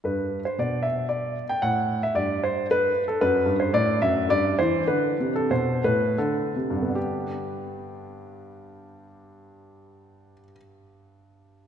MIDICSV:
0, 0, Header, 1, 2, 480
1, 0, Start_track
1, 0, Key_signature, 1, "major"
1, 0, Tempo, 527241
1, 48, Time_signature, 3, 2, 24, 8
1, 3408, Tempo, 560748
1, 4368, Tempo, 617284
1, 4848, Tempo, 685714
1, 5328, Tempo, 787402
1, 6768, Tempo, 803213
1, 8647, End_track
2, 0, Start_track
2, 0, Title_t, "Grand piano"
2, 0, Program_c, 0, 0
2, 35, Note_on_c, 0, 43, 52
2, 44, Note_on_c, 0, 71, 63
2, 354, Note_off_c, 0, 71, 0
2, 388, Note_off_c, 0, 43, 0
2, 412, Note_on_c, 0, 72, 64
2, 532, Note_off_c, 0, 72, 0
2, 533, Note_on_c, 0, 47, 49
2, 539, Note_on_c, 0, 74, 67
2, 752, Note_on_c, 0, 76, 69
2, 775, Note_off_c, 0, 74, 0
2, 964, Note_off_c, 0, 76, 0
2, 990, Note_on_c, 0, 74, 71
2, 1224, Note_off_c, 0, 47, 0
2, 1306, Note_off_c, 0, 74, 0
2, 1360, Note_on_c, 0, 79, 80
2, 1476, Note_on_c, 0, 78, 85
2, 1481, Note_on_c, 0, 45, 61
2, 1486, Note_off_c, 0, 79, 0
2, 1828, Note_off_c, 0, 45, 0
2, 1841, Note_off_c, 0, 78, 0
2, 1849, Note_on_c, 0, 76, 80
2, 1954, Note_on_c, 0, 43, 58
2, 1960, Note_on_c, 0, 74, 82
2, 1968, Note_off_c, 0, 76, 0
2, 2203, Note_off_c, 0, 74, 0
2, 2217, Note_on_c, 0, 72, 79
2, 2414, Note_off_c, 0, 72, 0
2, 2466, Note_on_c, 0, 71, 97
2, 2645, Note_off_c, 0, 43, 0
2, 2760, Note_off_c, 0, 71, 0
2, 2803, Note_on_c, 0, 69, 80
2, 2922, Note_off_c, 0, 69, 0
2, 2924, Note_on_c, 0, 42, 69
2, 2925, Note_on_c, 0, 71, 94
2, 3151, Note_on_c, 0, 43, 70
2, 3152, Note_off_c, 0, 42, 0
2, 3233, Note_off_c, 0, 71, 0
2, 3275, Note_on_c, 0, 72, 74
2, 3389, Note_off_c, 0, 43, 0
2, 3399, Note_on_c, 0, 45, 74
2, 3403, Note_off_c, 0, 72, 0
2, 3404, Note_on_c, 0, 74, 98
2, 3624, Note_off_c, 0, 45, 0
2, 3638, Note_off_c, 0, 74, 0
2, 3643, Note_on_c, 0, 76, 93
2, 3645, Note_on_c, 0, 42, 66
2, 3867, Note_off_c, 0, 42, 0
2, 3876, Note_on_c, 0, 43, 75
2, 3878, Note_off_c, 0, 76, 0
2, 3886, Note_on_c, 0, 74, 98
2, 4106, Note_off_c, 0, 43, 0
2, 4123, Note_off_c, 0, 74, 0
2, 4129, Note_on_c, 0, 72, 89
2, 4135, Note_on_c, 0, 52, 71
2, 4337, Note_off_c, 0, 72, 0
2, 4364, Note_off_c, 0, 52, 0
2, 4376, Note_on_c, 0, 71, 82
2, 4378, Note_on_c, 0, 50, 71
2, 4596, Note_off_c, 0, 50, 0
2, 4630, Note_on_c, 0, 48, 64
2, 4728, Note_off_c, 0, 71, 0
2, 4750, Note_on_c, 0, 69, 78
2, 4850, Note_off_c, 0, 48, 0
2, 4860, Note_off_c, 0, 69, 0
2, 4863, Note_on_c, 0, 47, 60
2, 4867, Note_on_c, 0, 72, 74
2, 5077, Note_off_c, 0, 47, 0
2, 5090, Note_off_c, 0, 72, 0
2, 5099, Note_on_c, 0, 45, 65
2, 5101, Note_on_c, 0, 71, 86
2, 5325, Note_off_c, 0, 45, 0
2, 5336, Note_on_c, 0, 50, 68
2, 5337, Note_off_c, 0, 71, 0
2, 5337, Note_on_c, 0, 69, 71
2, 5553, Note_off_c, 0, 50, 0
2, 5568, Note_on_c, 0, 48, 57
2, 5654, Note_on_c, 0, 43, 62
2, 5689, Note_on_c, 0, 50, 52
2, 5728, Note_on_c, 0, 59, 50
2, 5770, Note_on_c, 0, 62, 50
2, 5797, Note_off_c, 0, 48, 0
2, 5807, Note_on_c, 0, 67, 65
2, 5810, Note_off_c, 0, 69, 0
2, 5987, Control_c, 0, 64, 127
2, 7837, Note_off_c, 0, 43, 0
2, 7871, Note_off_c, 0, 50, 0
2, 7909, Note_off_c, 0, 59, 0
2, 7950, Note_off_c, 0, 62, 0
2, 7986, Note_off_c, 0, 67, 0
2, 8647, End_track
0, 0, End_of_file